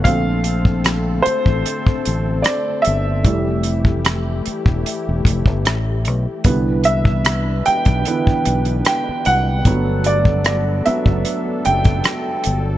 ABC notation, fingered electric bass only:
X:1
M:4/4
L:1/16
Q:"Swing 16ths" 1/4=75
K:C
V:1 name="Fingered electric bass" clef=bass
_B,,,6 z A,,, z2 A,,,2 z2 G,,,2 | F,,,6 z E,,, z E,,, F,,, G,,, A,,,2 B,,, z | C,,6 z B,,, z2 B,,,2 z2 C,,2 | G,,,6 z ^F,,, z2 F,,,2 z2 G,,,2 |]